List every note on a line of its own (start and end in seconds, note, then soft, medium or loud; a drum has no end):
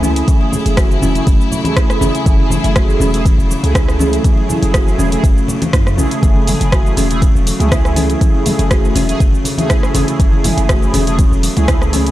0.00 0.22 C#2 loud
0.00 12.11 C#3 medium
0.00 12.11 F#3 medium
0.00 1.12 A3 medium
0.00 12.11 A3 medium
0.00 0.10 C#4 loud
0.00 1.12 E4 medium
0.00 6.21 E4 medium
0.00 1.12 G#4 loud
0.00 muted conga medium
0.00 high conga loud
0.00 shaker medium
0.16 closed hi-hat medium
0.16 shaker soft
0.27 0.40 F#3 medium
0.27 kick loud
0.27 closed hi-hat soft
0.27 high conga medium
0.27 shaker medium
0.41 muted conga soft
0.52 0.65 E3 medium
0.52 high conga medium
0.52 low conga loud
0.52 shaker loud
0.66 0.97 F#1 loud
0.66 closed hi-hat medium
0.66 muted conga soft
0.66 shaker soft
0.77 0.85 F#4 medium
0.77 kick loud
0.77 cross-stick loud
0.77 closed hi-hat soft
0.77 shaker medium
0.91 muted conga soft
0.91 shaker soft
1.02 1.20 E1 loud
1.02 1.09 C#4 loud
1.02 high conga medium
1.02 low conga loud
1.02 shaker loud
1.15 1.27 A3 medium
1.15 1.27 E4 medium
1.15 1.27 G#4 loud
1.15 closed hi-hat medium
1.15 muted conga soft
1.15 shaker soft
1.27 1.36 F#1 loud
1.27 1.39 A3 medium
1.27 kick loud
1.27 closed hi-hat soft
1.27 shaker medium
1.41 shaker soft
1.52 1.64 F#3 medium
1.52 muted conga medium
1.52 low conga medium
1.52 shaker medium
1.65 3.11 A3 medium
1.65 3.11 E4 medium
1.65 3.11 G#4 medium
1.65 closed hi-hat medium
1.65 high conga loud
1.65 shaker soft
1.75 1.84 E4 medium
1.75 kick loud
1.75 cross-stick loud
1.75 closed hi-hat soft
1.75 muted conga soft
1.75 shaker medium
1.90 cross-stick medium
1.90 shaker soft
2.01 2.11 F#1 medium
2.01 2.08 C#4 loud
2.01 muted conga medium
2.01 high conga medium
2.01 low conga loud
2.01 shaker medium
2.15 closed hi-hat medium
2.15 shaker soft
2.26 2.58 F#1 loud
2.26 2.38 F#3 medium
2.26 kick loud
2.26 closed hi-hat soft
2.26 high conga medium
2.26 shaker medium
2.40 muted conga soft
2.50 2.63 E3 medium
2.50 high conga medium
2.50 low conga loud
2.50 shaker loud
2.64 2.95 F#1 loud
2.64 closed hi-hat medium
2.64 muted conga soft
2.64 shaker soft
2.76 2.83 F#4 medium
2.76 kick loud
2.76 cross-stick loud
2.76 closed hi-hat soft
2.76 shaker medium
2.89 muted conga medium
2.89 shaker soft
3.00 3.32 E1 medium
3.00 3.08 C#4 loud
3.00 high conga medium
3.00 low conga loud
3.00 shaker medium
3.13 3.25 A3 medium
3.13 3.25 E4 medium
3.13 3.25 G#4 loud
3.13 closed hi-hat medium
3.13 muted conga soft
3.13 shaker soft
3.25 3.37 A3 medium
3.25 kick loud
3.25 closed hi-hat soft
3.25 high conga medium
3.25 shaker medium
3.38 3.55 E1 medium
3.38 shaker soft
3.50 3.62 F#3 medium
3.50 muted conga soft
3.50 shaker loud
3.63 4.19 C#2 loud
3.63 5.09 A3 medium
3.63 5.09 E4 medium
3.63 5.09 G#4 loud
3.63 closed hi-hat soft
3.63 shaker soft
3.75 kick loud
3.75 cross-stick loud
3.75 closed hi-hat soft
3.75 muted conga soft
3.75 low conga loud
3.75 shaker medium
3.88 cross-stick medium
3.88 shaker soft
3.99 4.07 C#4 loud
3.99 muted conga medium
3.99 high conga medium
3.99 shaker loud
4.13 closed hi-hat medium
4.13 shaker soft
4.24 4.37 F#3 medium
4.24 kick loud
4.24 closed hi-hat soft
4.24 high conga medium
4.24 shaker medium
4.38 muted conga soft
4.49 4.61 E3 medium
4.49 high conga medium
4.49 low conga loud
4.49 shaker medium
4.62 4.93 F#1 loud
4.62 closed hi-hat medium
4.62 muted conga soft
4.62 shaker soft
4.74 4.81 F#4 medium
4.74 kick loud
4.74 cross-stick loud
4.74 closed hi-hat soft
4.74 shaker medium
4.87 muted conga soft
4.87 shaker soft
4.98 5.17 E1 medium
4.98 5.06 C#4 loud
4.98 high conga medium
4.98 low conga loud
4.98 shaker medium
5.12 5.24 A3 medium
5.12 5.24 E4 medium
5.12 5.24 G#4 loud
5.12 closed hi-hat medium
5.12 muted conga soft
5.12 shaker soft
5.24 5.33 F#1 medium
5.24 5.36 A3 medium
5.24 kick loud
5.24 closed hi-hat soft
5.24 shaker medium
5.38 shaker soft
5.48 5.60 F#3 medium
5.48 muted conga soft
5.48 low conga medium
5.48 shaker medium
5.62 closed hi-hat medium
5.62 high conga loud
5.62 shaker soft
5.73 5.99 F#2 medium
5.73 5.81 E4 medium
5.73 kick loud
5.73 cross-stick loud
5.73 closed hi-hat soft
5.73 muted conga soft
5.73 shaker medium
5.87 cross-stick medium
5.87 shaker soft
5.98 6.07 A1 medium
5.98 7.08 A3 medium
5.98 6.05 C#4 loud
5.98 7.08 E4 medium
5.98 7.08 G#4 medium
5.98 muted conga soft
5.98 high conga medium
5.98 low conga loud
5.98 shaker medium
6.11 closed hi-hat medium
6.11 shaker soft
6.23 6.55 F#1 loud
6.23 6.35 F#3 medium
6.23 kick loud
6.23 closed hi-hat soft
6.23 high conga medium
6.23 shaker medium
6.36 muted conga soft
6.47 6.60 E3 medium
6.47 mid tom medium
6.47 open hi-hat medium
6.47 high conga medium
6.47 low conga medium
6.47 shaker medium
6.61 6.92 F#1 loud
6.61 closed hi-hat medium
6.61 muted conga soft
6.61 shaker soft
6.72 6.79 F#4 medium
6.72 kick loud
6.72 cross-stick loud
6.72 closed hi-hat soft
6.72 shaker medium
6.86 muted conga soft
6.86 shaker soft
6.97 7.29 E1 medium
6.97 7.04 C#4 loud
6.97 open hi-hat medium
6.97 high conga medium
6.97 low conga loud
6.97 shaker medium
7.11 7.22 A3 medium
7.11 7.22 E4 medium
7.11 7.22 G#4 loud
7.11 closed hi-hat medium
7.11 muted conga soft
7.11 shaker soft
7.22 7.34 A3 medium
7.22 kick loud
7.22 closed hi-hat soft
7.22 high conga medium
7.22 shaker medium
7.35 7.52 E1 medium
7.35 shaker soft
7.46 7.59 F#3 medium
7.46 open hi-hat medium
7.46 muted conga soft
7.46 shaker medium
7.60 8.16 C#2 loud
7.60 9.06 A3 medium
7.60 9.06 E4 medium
7.60 9.06 G#4 loud
7.60 closed hi-hat medium
7.60 mid tom medium
7.60 shaker soft
7.71 7.79 E4 medium
7.71 kick loud
7.71 cross-stick loud
7.71 closed hi-hat soft
7.71 muted conga soft
7.71 low conga medium
7.71 shaker medium
7.85 cross-stick medium
7.85 shaker soft
7.96 8.04 C#4 loud
7.96 open hi-hat medium
7.96 muted conga soft
7.96 high conga medium
7.96 shaker medium
8.10 closed hi-hat medium
8.10 shaker soft
8.21 8.33 F#3 medium
8.21 kick loud
8.21 closed hi-hat soft
8.21 high conga medium
8.21 shaker soft
8.34 muted conga medium
8.46 8.58 E3 medium
8.46 mid tom medium
8.46 open hi-hat medium
8.46 high conga medium
8.46 low conga loud
8.46 shaker medium
8.59 8.90 F#1 loud
8.59 closed hi-hat medium
8.59 muted conga soft
8.59 shaker soft
8.71 8.78 F#4 medium
8.71 kick loud
8.71 cross-stick loud
8.71 closed hi-hat soft
8.71 shaker soft
8.84 muted conga medium
8.84 shaker soft
8.95 9.13 E1 medium
8.95 9.03 C#4 loud
8.95 open hi-hat medium
8.95 high conga medium
8.95 low conga medium
8.95 shaker medium
9.09 9.21 A3 medium
9.09 9.21 E4 medium
9.09 9.21 G#4 loud
9.09 closed hi-hat medium
9.09 muted conga soft
9.09 shaker soft
9.20 9.30 F#1 loud
9.20 9.32 A3 medium
9.20 kick loud
9.20 closed hi-hat soft
9.20 shaker medium
9.35 shaker soft
9.44 9.57 F#3 medium
9.44 open hi-hat medium
9.44 muted conga medium
9.44 low conga medium
9.44 shaker medium
9.58 11.04 A3 medium
9.58 11.04 E4 medium
9.58 11.04 G#4 loud
9.58 closed hi-hat medium
9.58 high conga loud
9.58 shaker soft
9.69 9.77 E4 medium
9.69 kick loud
9.69 cross-stick loud
9.69 closed hi-hat soft
9.69 muted conga soft
9.69 shaker soft
9.83 cross-stick medium
9.83 shaker soft
9.94 10.04 F#1 medium
9.94 10.02 C#4 loud
9.94 open hi-hat medium
9.94 muted conga medium
9.94 high conga medium
9.94 low conga loud
9.94 shaker medium
10.08 closed hi-hat medium
10.08 shaker soft
10.19 10.51 F#1 loud
10.19 10.31 F#3 medium
10.19 kick loud
10.19 closed hi-hat soft
10.19 high conga medium
10.19 shaker soft
10.33 muted conga soft
10.44 10.56 E3 medium
10.44 mid tom medium
10.44 open hi-hat medium
10.44 high conga medium
10.44 low conga loud
10.44 shaker medium
10.57 10.88 F#1 loud
10.57 closed hi-hat medium
10.57 muted conga soft
10.57 shaker soft
10.69 10.76 F#4 medium
10.69 kick loud
10.69 cross-stick loud
10.69 closed hi-hat soft
10.69 shaker soft
10.82 muted conga medium
10.82 shaker soft
10.94 11.26 E1 loud
10.94 11.01 C#4 loud
10.94 open hi-hat medium
10.94 high conga medium
10.94 low conga loud
10.94 shaker medium
11.07 11.19 A3 loud
11.07 11.19 E4 medium
11.07 11.19 G#4 loud
11.07 closed hi-hat medium
11.07 muted conga soft
11.07 shaker soft
11.19 11.31 A3 medium
11.19 kick loud
11.19 closed hi-hat soft
11.19 high conga medium
11.19 shaker medium
11.32 11.49 E1 medium
11.32 shaker soft
11.43 11.56 F#3 medium
11.43 open hi-hat medium
11.43 muted conga medium
11.43 shaker medium
11.57 12.11 C#2 loud
11.57 12.11 A3 medium
11.57 12.11 E4 medium
11.57 12.11 G#4 loud
11.57 closed hi-hat medium
11.57 mid tom medium
11.57 shaker soft
11.68 11.76 E4 medium
11.68 kick loud
11.68 cross-stick loud
11.68 closed hi-hat soft
11.68 muted conga soft
11.68 low conga loud
11.68 shaker soft
11.82 cross-stick medium
11.82 shaker soft
11.93 12.00 C#4 loud
11.93 open hi-hat medium
11.93 muted conga medium
11.93 high conga medium
11.93 shaker medium
12.07 closed hi-hat medium
12.07 shaker soft